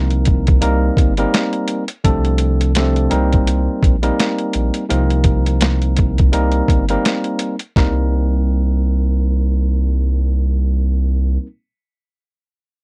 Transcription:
Already playing: C2 C3 F3 A#3 C4 D#4 A#4
0.10 closed hi-hat
0.25 kick, closed hi-hat
0.47 kick, closed hi-hat
0.61 C2 G3 A#3 C4 D#4 A#4, closed hi-hat
0.97 G1, kick, closed hi-hat
1.17 G3 A#3 C4 D#4 A#4, closed hi-hat
1.34 snare, closed hi-hat
1.53 closed hi-hat
1.68 closed hi-hat
1.88 closed hi-hat
2.04 C2 C3 F3 A3 C4 D4 A4, kick, closed hi-hat
2.25 closed hi-hat
2.38 closed hi-hat
2.61 closed hi-hat
2.75 C3 F3 A3 C4 D4 A4, snare, closed hi-hat
2.96 closed hi-hat
3.10 C2 G3 A#3 C4 D#4 A#4, closed hi-hat
3.33 kick, closed hi-hat
3.47 closed hi-hat
3.83 A#1, kick, closed hi-hat
4.02 G3 A#3 C4 D#4 A#4, closed hi-hat
4.20 snare, closed hi-hat
4.38 closed hi-hat
4.53 A#1, closed hi-hat
4.74 closed hi-hat
4.89 C2 C3 F3 A#3 C4 D#4 A#4, closed hi-hat
5.10 closed hi-hat
5.24 kick, closed hi-hat
5.46 closed hi-hat
5.61 snare, closed hi-hat
5.82 closed hi-hat
5.97 kick, closed hi-hat
6.18 kick, closed hi-hat
6.32 C2 G3 A#3 C4 D#4 A#4, closed hi-hat
6.52 closed hi-hat
6.68 G1, kick, closed hi-hat
6.89 G3 A#3 C4 D#4 A#4, closed hi-hat
7.05 snare, closed hi-hat
7.24 closed hi-hat
7.39 closed hi-hat
7.59 closed hi-hat
7.76 C2 G3 A#3 C4 D#4 A#4, kick, snare

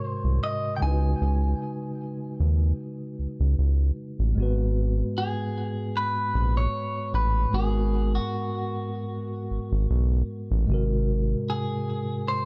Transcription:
Already playing: G#2 C3 G#3 F#4 A#4 C#5
0.05 C5
0.24 C2
0.44 D#5
0.77 C#3 G#3 G5
0.82 C#2 D#4 E4 G#5
0.87 B4
0.91 F#4
1.21 C#2
2.40 D#2
3.19 C#2
3.40 C#2
3.58 C#2
4.19 A1
4.33 G#2 G#3
4.37 G#1 B3 F#4
4.42 B4
5.18 G#4
5.97 B4
6.35 A#1
6.57 C#5
7.13 A1 B4
7.49 G#2 G#3
7.53 G#1 B3 F#4 G#4
7.58 A#4
8.15 F#4
9.50 G#1
9.72 G#1
9.90 B1
10.51 A1
10.65 G#2 G#3
10.69 G#1 C3 F#4
10.74 A#4
11.50 G#4
12.28 C5

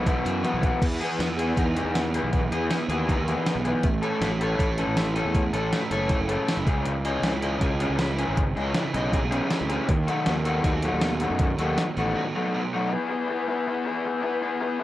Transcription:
Already playing: B1 B2 E3 E4
0.05 E3 B3 E4 F#4, kick, closed hi-hat
0.25 F#2 F#4, closed hi-hat
0.43 E3 B3 E4 F#4, closed hi-hat, high tom
0.54 B1
0.63 E3 B3 E4 F#4, kick, closed hi-hat
0.82 E2 E3, kick, closed hi-hat, crash
1.01 B3 E4 G#4, closed hi-hat
1.19 E2 B3, snare, closed hi-hat, tambourine
1.38 B3 E4 G#4, closed hi-hat
1.57 E2 D#4, kick, closed hi-hat
1.76 E3 B3 E4 G#4, closed hi-hat
1.85 E2
1.95 B3, snare, closed hi-hat, tambourine
2.14 E3 B3 E4 G#4, closed hi-hat
2.23 B1
2.33 E3, kick, closed hi-hat
2.51 E2 B3 E4 G#4, closed hi-hat
2.70 B3, snare, closed hi-hat, tambourine
2.88 D#2 B3 E4 G#4, closed hi-hat
3.08 D#4, kick, closed hi-hat
3.17 D#2
3.28 E3 B3 E4 G#4, closed hi-hat
3.46 B3, snare, closed hi-hat, tambourine
3.55 B1
3.65 E3 B3 E4 G#4, closed hi-hat
3.83 A1 A3, kick, closed hi-hat
4.02 E3 A3 C#4 A4 C#5, closed hi-hat
4.21 A1 E4, snare, closed hi-hat, tambourine
4.41 E3 A3 C#4 A4 C#5, closed hi-hat
4.59 A1 A4, kick, closed hi-hat
4.78 E3 A3 C#4 A4, closed hi-hat
4.87 A1
4.97 E4, snare, closed hi-hat, tambourine
5.15 E3 A3 C#4 A4, closed hi-hat
5.25 E2
5.35 A3, kick, closed hi-hat
5.54 A1 E3 A3 C#4 A4 C#5, closed hi-hat
5.73 E4, snare, closed hi-hat, tambourine
5.91 F#1 E3 A3 C#4 A4 C#5, closed hi-hat
6.10 A4, kick, closed hi-hat
6.20 F#1
6.29 E3 A3 C#4 A4, closed hi-hat
6.49 E4, snare, closed hi-hat, tambourine
6.57 F#1
6.67 C#2 C#3 E3 G#3 C#4 G#4, kick, closed hi-hat
6.85 C#3, closed hi-hat
7.05 E3 G#3 C#4 G#4 D#5, closed hi-hat
7.22 C#2 E4, snare, closed hi-hat, tambourine
7.42 E3 G#3 C#4 G#4 D#5, closed hi-hat
7.61 C#2 G#4, kick, closed hi-hat
7.80 E3 G#3 C#4 G#4, closed hi-hat
7.89 C#2
7.99 E4, snare, closed hi-hat, tambourine
8.18 E3 G#3 C#4 G#4, closed hi-hat
8.28 G#1
8.37 C#3, kick, closed hi-hat
8.56 C#2 E3 G#3 C#4 G#4 D#5, closed hi-hat
8.74 E4, snare, closed hi-hat, tambourine
8.94 B1 E3 G#3 C#4 G#4 D#5, closed hi-hat
9.13 G#4, kick, closed hi-hat
9.23 B1
9.31 E3 G#3 C#4 G#4, closed hi-hat
9.51 E4, snare, closed hi-hat, tambourine
9.61 D2
9.69 E3 G#3 C#4 G#4, closed hi-hat
9.88 D#2 D#3, kick, closed hi-hat
10.07 F#3 A3 D#4 F#4 A4, closed hi-hat
10.26 D#2 B3, snare, closed hi-hat, tambourine
10.45 F#3 A3 D#4 F#4 A4, closed hi-hat
10.64 D#2 F#4, kick, closed hi-hat
10.82 F#3 A3 D#4 F#4, closed hi-hat
10.93 D#2
11.01 B3, snare, closed hi-hat, tambourine
11.20 F#3 A3 D#4 F#4, closed hi-hat
11.30 F#2
11.39 D#3, kick, closed hi-hat
11.58 D#2 F#3 A3 D#4 F#4 A4, closed hi-hat
11.76 B3, snare, closed hi-hat, tambourine
11.96 A1 F#3 A3 D#4 F#4 A4, closed hi-hat
12.16 F#4
12.35 F#3 A3 D#4 F#4
12.54 B3
12.73 F#3 A3 D#4 F#4
12.91 B3 E4 G#4
13.10 B3 E4 G#4
13.29 B3 E4 G#4
13.48 B3 E4 G#4
13.67 B3 E4 G#4
13.85 B3 E4 G#4
14.05 B3 E4 G#4
14.23 B3 E4 G#4
14.42 B3 E4 G#4
14.61 B3 E4 G#4
14.80 B3 E4

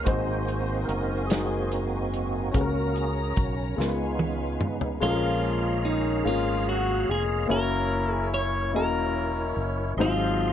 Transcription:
Already playing: D#5
0.03 G#1 G#2 G#3 A#3 C4 D#4 F#4 C5 G#5, kick, closed hi-hat
0.07 F#4 C5
0.48 closed hi-hat
0.85 A#4, closed hi-hat
0.89 F#1
1.27 G#3 C4 G#4, closed hi-hat
1.31 D#4 F#4 A#4, snare
1.71 C4 D#4 F#4, closed hi-hat
2.14 closed hi-hat
2.51 C#2 C#3 A#3 C#4 F#4 G#4 A#4, kick, closed hi-hat
2.55 C#4 F#4 A#4 C#5 A#5
2.61 A#4
2.94 G#4, closed hi-hat
3.36 B1 F#4, kick, closed hi-hat
3.76 C#2 C#3 G#3 B3 C#4 D#4 F4 A#4 B4 F5 G#5, snare
3.85 B4
4.19 high tom
4.61 mid tom
4.81 floor tom
5.00 A#1 A#2 F3 G#3 A#3 C#4 F4 G#4 A4 C#5 F5 A#5
5.09 A#4
5.85 D#3 D#4
6.23 G#1 F3 G#3 A#3 C#4 F4 A#4 F5
6.68 F#3 F#4
7.09 F1 G#3 G#4
7.46 F#1 A#3 C#4 E4 F#4 A#4 C#5
7.51 C#4 E4 A#4
8.12 G#4
8.33 C#4 C#5
8.72 E1 A#3 C#4 E4 F#4 A#4 D#5
8.76 E4 A#4
9.57 F#1
9.97 G#1 G#2 F#3 G#3 C4 D#4 G#4 C5 D#5 C6
10.01 F3 F4

